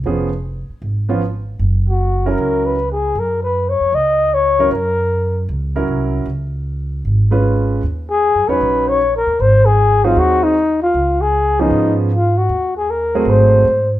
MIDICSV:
0, 0, Header, 1, 5, 480
1, 0, Start_track
1, 0, Tempo, 388853
1, 52, Time_signature, 4, 2, 24, 8
1, 17278, End_track
2, 0, Start_track
2, 0, Title_t, "Flugelhorn"
2, 0, Program_c, 0, 56
2, 2338, Note_on_c, 0, 66, 76
2, 2819, Note_on_c, 0, 70, 91
2, 2837, Note_off_c, 0, 66, 0
2, 3282, Note_on_c, 0, 71, 81
2, 3300, Note_off_c, 0, 70, 0
2, 3589, Note_off_c, 0, 71, 0
2, 3602, Note_on_c, 0, 68, 81
2, 3942, Note_on_c, 0, 70, 91
2, 3960, Note_off_c, 0, 68, 0
2, 4228, Note_off_c, 0, 70, 0
2, 4235, Note_on_c, 0, 71, 85
2, 4556, Note_on_c, 0, 73, 90
2, 4574, Note_off_c, 0, 71, 0
2, 4874, Note_on_c, 0, 75, 100
2, 4892, Note_off_c, 0, 73, 0
2, 5356, Note_on_c, 0, 73, 94
2, 5375, Note_off_c, 0, 75, 0
2, 5823, Note_off_c, 0, 73, 0
2, 5830, Note_on_c, 0, 70, 88
2, 6737, Note_off_c, 0, 70, 0
2, 10001, Note_on_c, 0, 68, 95
2, 10486, Note_on_c, 0, 71, 101
2, 10504, Note_off_c, 0, 68, 0
2, 10965, Note_on_c, 0, 73, 97
2, 10984, Note_off_c, 0, 71, 0
2, 11275, Note_off_c, 0, 73, 0
2, 11310, Note_on_c, 0, 70, 88
2, 11612, Note_on_c, 0, 72, 97
2, 11630, Note_off_c, 0, 70, 0
2, 11919, Note_on_c, 0, 68, 100
2, 11938, Note_off_c, 0, 72, 0
2, 12403, Note_on_c, 0, 65, 88
2, 12421, Note_off_c, 0, 68, 0
2, 12578, Note_on_c, 0, 66, 93
2, 12597, Note_off_c, 0, 65, 0
2, 12881, Note_on_c, 0, 63, 90
2, 12899, Note_off_c, 0, 66, 0
2, 13350, Note_off_c, 0, 63, 0
2, 13363, Note_on_c, 0, 65, 81
2, 13841, Note_on_c, 0, 68, 88
2, 13860, Note_off_c, 0, 65, 0
2, 14326, Note_on_c, 0, 63, 94
2, 14345, Note_off_c, 0, 68, 0
2, 14792, Note_off_c, 0, 63, 0
2, 14978, Note_on_c, 0, 65, 80
2, 15279, Note_on_c, 0, 66, 76
2, 15297, Note_off_c, 0, 65, 0
2, 15748, Note_off_c, 0, 66, 0
2, 15763, Note_on_c, 0, 68, 79
2, 15932, Note_on_c, 0, 70, 88
2, 15950, Note_off_c, 0, 68, 0
2, 16417, Note_on_c, 0, 72, 84
2, 16435, Note_off_c, 0, 70, 0
2, 17194, Note_off_c, 0, 72, 0
2, 17278, End_track
3, 0, Start_track
3, 0, Title_t, "Grand piano"
3, 0, Program_c, 1, 0
3, 69, Note_on_c, 1, 53, 62
3, 77, Note_on_c, 1, 59, 58
3, 77, Note_on_c, 1, 61, 57
3, 80, Note_on_c, 1, 68, 70
3, 346, Note_off_c, 1, 53, 0
3, 350, Note_off_c, 1, 59, 0
3, 350, Note_off_c, 1, 61, 0
3, 352, Note_off_c, 1, 68, 0
3, 1341, Note_on_c, 1, 59, 57
3, 1348, Note_on_c, 1, 61, 57
3, 1349, Note_on_c, 1, 53, 61
3, 1353, Note_on_c, 1, 65, 70
3, 1482, Note_off_c, 1, 59, 0
3, 1485, Note_off_c, 1, 61, 0
3, 1486, Note_off_c, 1, 53, 0
3, 1488, Note_off_c, 1, 65, 0
3, 2787, Note_on_c, 1, 54, 62
3, 2787, Note_on_c, 1, 61, 62
3, 2792, Note_on_c, 1, 70, 68
3, 2794, Note_on_c, 1, 64, 55
3, 3390, Note_off_c, 1, 54, 0
3, 3390, Note_off_c, 1, 61, 0
3, 3393, Note_off_c, 1, 70, 0
3, 3394, Note_off_c, 1, 64, 0
3, 5668, Note_on_c, 1, 54, 64
3, 5669, Note_on_c, 1, 61, 60
3, 5677, Note_on_c, 1, 64, 57
3, 5678, Note_on_c, 1, 70, 75
3, 5808, Note_off_c, 1, 54, 0
3, 5809, Note_off_c, 1, 61, 0
3, 5813, Note_off_c, 1, 64, 0
3, 5814, Note_off_c, 1, 70, 0
3, 7105, Note_on_c, 1, 61, 59
3, 7106, Note_on_c, 1, 54, 66
3, 7110, Note_on_c, 1, 70, 72
3, 7113, Note_on_c, 1, 64, 65
3, 7713, Note_off_c, 1, 54, 0
3, 7713, Note_off_c, 1, 61, 0
3, 7715, Note_off_c, 1, 70, 0
3, 7717, Note_off_c, 1, 64, 0
3, 9024, Note_on_c, 1, 56, 65
3, 9031, Note_on_c, 1, 61, 59
3, 9031, Note_on_c, 1, 65, 60
3, 9033, Note_on_c, 1, 71, 72
3, 9633, Note_off_c, 1, 56, 0
3, 9636, Note_off_c, 1, 65, 0
3, 9637, Note_off_c, 1, 61, 0
3, 9638, Note_off_c, 1, 71, 0
3, 10475, Note_on_c, 1, 61, 54
3, 10476, Note_on_c, 1, 54, 61
3, 10479, Note_on_c, 1, 63, 55
3, 10484, Note_on_c, 1, 73, 68
3, 11079, Note_off_c, 1, 54, 0
3, 11079, Note_off_c, 1, 61, 0
3, 11081, Note_off_c, 1, 63, 0
3, 11083, Note_off_c, 1, 73, 0
3, 12395, Note_on_c, 1, 54, 67
3, 12395, Note_on_c, 1, 63, 63
3, 12397, Note_on_c, 1, 60, 59
3, 12399, Note_on_c, 1, 68, 73
3, 12998, Note_off_c, 1, 54, 0
3, 12998, Note_off_c, 1, 63, 0
3, 12999, Note_off_c, 1, 60, 0
3, 13000, Note_off_c, 1, 68, 0
3, 14309, Note_on_c, 1, 53, 64
3, 14313, Note_on_c, 1, 61, 62
3, 14314, Note_on_c, 1, 59, 59
3, 14319, Note_on_c, 1, 68, 71
3, 14914, Note_off_c, 1, 53, 0
3, 14915, Note_off_c, 1, 61, 0
3, 14916, Note_off_c, 1, 59, 0
3, 14919, Note_off_c, 1, 68, 0
3, 16228, Note_on_c, 1, 54, 69
3, 16231, Note_on_c, 1, 57, 66
3, 16232, Note_on_c, 1, 60, 59
3, 16238, Note_on_c, 1, 68, 72
3, 16831, Note_off_c, 1, 54, 0
3, 16833, Note_off_c, 1, 57, 0
3, 16834, Note_off_c, 1, 60, 0
3, 16836, Note_off_c, 1, 68, 0
3, 17278, End_track
4, 0, Start_track
4, 0, Title_t, "Upright bass"
4, 0, Program_c, 2, 32
4, 46, Note_on_c, 2, 29, 74
4, 797, Note_off_c, 2, 29, 0
4, 1008, Note_on_c, 2, 32, 79
4, 1922, Note_off_c, 2, 32, 0
4, 1967, Note_on_c, 2, 30, 79
4, 2883, Note_off_c, 2, 30, 0
4, 2937, Note_on_c, 2, 37, 81
4, 3849, Note_off_c, 2, 37, 0
4, 3891, Note_on_c, 2, 42, 76
4, 4642, Note_off_c, 2, 42, 0
4, 4698, Note_on_c, 2, 41, 62
4, 4837, Note_off_c, 2, 41, 0
4, 4845, Note_on_c, 2, 37, 79
4, 5764, Note_off_c, 2, 37, 0
4, 5812, Note_on_c, 2, 42, 82
4, 6729, Note_off_c, 2, 42, 0
4, 6773, Note_on_c, 2, 37, 82
4, 7223, Note_off_c, 2, 37, 0
4, 7254, Note_on_c, 2, 36, 71
4, 7704, Note_off_c, 2, 36, 0
4, 7721, Note_on_c, 2, 37, 80
4, 8644, Note_off_c, 2, 37, 0
4, 8699, Note_on_c, 2, 32, 74
4, 9614, Note_off_c, 2, 32, 0
4, 9666, Note_on_c, 2, 39, 80
4, 10260, Note_off_c, 2, 39, 0
4, 10307, Note_on_c, 2, 42, 58
4, 10455, Note_off_c, 2, 42, 0
4, 10472, Note_on_c, 2, 40, 61
4, 10617, Note_off_c, 2, 40, 0
4, 10627, Note_on_c, 2, 34, 78
4, 11373, Note_off_c, 2, 34, 0
4, 11435, Note_on_c, 2, 39, 64
4, 11580, Note_off_c, 2, 39, 0
4, 11597, Note_on_c, 2, 32, 77
4, 12503, Note_off_c, 2, 32, 0
4, 12545, Note_on_c, 2, 39, 79
4, 13455, Note_off_c, 2, 39, 0
4, 13507, Note_on_c, 2, 37, 82
4, 14416, Note_off_c, 2, 37, 0
4, 14451, Note_on_c, 2, 44, 78
4, 15367, Note_off_c, 2, 44, 0
4, 15418, Note_on_c, 2, 39, 80
4, 16330, Note_off_c, 2, 39, 0
4, 16357, Note_on_c, 2, 32, 81
4, 16813, Note_off_c, 2, 32, 0
4, 17278, End_track
5, 0, Start_track
5, 0, Title_t, "Muted upright bass strokes"
5, 856, Note_on_c, 9, 29, 35
5, 979, Note_off_c, 9, 29, 0
5, 17278, End_track
0, 0, End_of_file